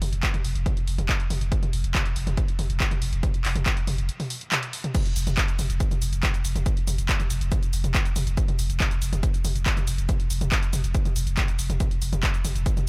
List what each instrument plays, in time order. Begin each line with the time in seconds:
0.02 sub bass F1, open hi-hat, mid tom
0.13 sub bass F1, closed hi-hat
0.23 kick, clap, closed hi-hat
0.34 closed hi-hat, mid tom
0.45 sub bass F1, open hi-hat
0.56 sub bass F1, closed hi-hat
0.66 kick, closed hi-hat, mid tom
0.77 closed hi-hat
0.87 sub bass F1, open hi-hat
0.98 sub bass F1, closed hi-hat, mid tom
1.09 kick, clap, closed hi-hat
1.20 closed hi-hat
1.30 sub bass F1, open hi-hat, mid tom
1.41 sub bass F1, closed hi-hat
1.52 kick, closed hi-hat
1.63 closed hi-hat, mid tom
1.73 sub bass F1, open hi-hat
1.84 sub bass F1, closed hi-hat
1.95 kick, clap, closed hi-hat, mid tom
2.06 closed hi-hat
2.16 sub bass F1, open hi-hat
2.27 sub bass F1, closed hi-hat, mid tom
2.37 kick, closed hi-hat
2.48 closed hi-hat
2.59 sub bass F1, open hi-hat, mid tom
2.70 sub bass F1, closed hi-hat
2.80 kick, clap, closed hi-hat
2.91 closed hi-hat, mid tom
3.02 sub bass F1, open hi-hat
3.13 sub bass F1, closed hi-hat
3.23 kick, closed hi-hat, mid tom
3.34 closed hi-hat
3.45 sub bass F1, clap, open hi-hat
3.56 sub bass F1, closed hi-hat, mid tom
3.66 kick, clap, closed hi-hat
3.77 closed hi-hat
3.87 sub bass F1, open hi-hat, mid tom
3.98 sub bass F1, closed hi-hat
4.09 closed hi-hat
4.20 open hi-hat, mid tom
4.30 open hi-hat
4.41 closed hi-hat
4.52 clap, closed hi-hat, mid tom
4.63 closed hi-hat
4.73 open hi-hat
4.84 closed hi-hat, mid tom
4.95 kick, closed hi-hat, mid tom, crash, shaker
5.06 closed hi-hat
5.16 sub bass F1, open hi-hat, shaker
5.27 sub bass F1, closed hi-hat, mid tom, shaker
5.37 kick, clap, closed hi-hat, shaker
5.48 closed hi-hat, shaker
5.59 sub bass F1, open hi-hat, mid tom, shaker
5.70 sub bass F1, closed hi-hat, shaker
5.80 kick, closed hi-hat, shaker
5.91 closed hi-hat, mid tom, shaker
6.02 sub bass F1, open hi-hat, shaker
6.13 sub bass F1, closed hi-hat, shaker
6.23 kick, clap, closed hi-hat, mid tom, shaker
6.34 closed hi-hat, shaker
6.45 sub bass F1, open hi-hat, shaker
6.56 sub bass F1, closed hi-hat, mid tom, shaker
6.66 kick, closed hi-hat, shaker
6.77 closed hi-hat
6.87 sub bass F1, open hi-hat, mid tom, shaker
6.98 sub bass F1, closed hi-hat, shaker
7.09 kick, clap, closed hi-hat, shaker
7.20 closed hi-hat, mid tom, shaker
7.30 sub bass F1, open hi-hat, shaker
7.41 sub bass F1, closed hi-hat, shaker
7.52 kick, closed hi-hat, mid tom, shaker
7.63 closed hi-hat, shaker
7.73 sub bass F1, open hi-hat, shaker
7.84 sub bass F1, closed hi-hat, mid tom, shaker
7.95 kick, clap, closed hi-hat, shaker
8.06 closed hi-hat, shaker
8.16 sub bass F1, open hi-hat, mid tom, shaker
8.27 sub bass F1, closed hi-hat, shaker
8.37 kick, closed hi-hat, shaker
8.48 closed hi-hat, mid tom
8.59 sub bass F1, open hi-hat, shaker
8.70 sub bass F1, closed hi-hat, shaker
8.80 kick, clap, closed hi-hat, mid tom, shaker
8.91 closed hi-hat, shaker
9.02 sub bass F1, open hi-hat, shaker
9.13 sub bass F1, closed hi-hat, mid tom, shaker
9.23 kick, closed hi-hat, shaker
9.34 closed hi-hat, shaker
9.45 sub bass F1, open hi-hat, mid tom, shaker
9.56 sub bass F1, closed hi-hat, shaker
9.66 kick, clap, closed hi-hat, shaker
9.77 closed hi-hat, mid tom, shaker
9.87 sub bass F1, open hi-hat, shaker
9.98 sub bass F1, closed hi-hat, shaker
10.09 kick, closed hi-hat, mid tom, shaker
10.20 closed hi-hat
10.30 sub bass F1, open hi-hat, shaker
10.41 sub bass F1, closed hi-hat, mid tom, shaker
10.52 kick, clap, closed hi-hat, shaker
10.63 closed hi-hat, shaker
10.73 sub bass F1, open hi-hat, mid tom, shaker
10.84 sub bass F1, closed hi-hat, shaker
10.95 kick, closed hi-hat, shaker
11.05 closed hi-hat, mid tom, shaker
11.16 sub bass F1, open hi-hat, shaker
11.27 sub bass F1, closed hi-hat, shaker
11.37 kick, clap, closed hi-hat, mid tom, shaker
11.48 closed hi-hat, shaker
11.59 sub bass F1, open hi-hat, shaker
11.70 sub bass F1, closed hi-hat, mid tom, shaker
11.80 kick, closed hi-hat, mid tom, shaker
11.91 closed hi-hat
12.02 sub bass F1, open hi-hat, shaker
12.13 sub bass F1, closed hi-hat, mid tom, shaker
12.23 kick, clap, closed hi-hat, shaker
12.34 closed hi-hat, shaker
12.45 sub bass F1, open hi-hat, mid tom, shaker
12.55 sub bass F1, closed hi-hat, shaker
12.66 kick, closed hi-hat, shaker
12.77 closed hi-hat, mid tom, shaker